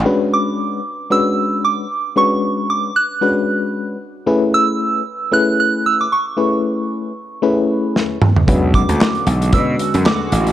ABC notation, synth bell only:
X:1
M:4/4
L:1/16
Q:"Swing 16ths" 1/4=114
K:Bdor
V:1 name="Synth bell"
z2 d'6 e'4 d'4 | c'4 d'2 f'6 z4 | z2 e'6 f'2 f'2 e' d' c'2- | c'12- c'2 z2 |
z2 d'6 e'4 d'3 z |]